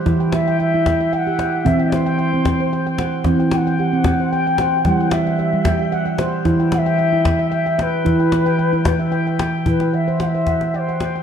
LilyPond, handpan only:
<<
  \new Staff \with { instrumentName = "Handpan" } { \time 3/4 \tempo 4 = 112 << { g'16 g''8. g''8 g''16 e''8 g'16 e''8~ | e''16 g''8. g''8 g''16 c''8 g''16 c''8~ | c''16 g''8. g'8 g''16 c''8 g''16 c''8~ | c''16 g''8. e''8 g''16 g'8 fis''16 g'8~ |
g'16 g''8. g''8 g''16 e''8 g''16 e''8~ | e''16 g''8. g''8 g''16 e''8 g''8. | r16 g''16 fis''8. r16 fis''8. fis''8 g''16 | } \\ { e'8 r16 g''8 e'8 r16 g''8 g''8 | c'8 r16 g''8 c'8 r16 g''8 fis''8 | c'8 r16 g''8 c'8 r16 g''8 fis''8 | g8 r16 fis''8 g8 r16 fis''8 c''8 |
e'8 r16 g''8 e'8 r16 g''8 g''8 | e'8 r16 g''8 e'8 r16 g''8 g''8 | e'8 r16 c''8 c''8 r16 g''8 g''8 | } >> }
  \new Staff \with { instrumentName = "Handpan" } { \clef bass \time 3/4 e2 r4 | e2 r4 | e2 r4 | e2 r4 |
e2 r4 | e2 r4 | e2 r4 | }
>>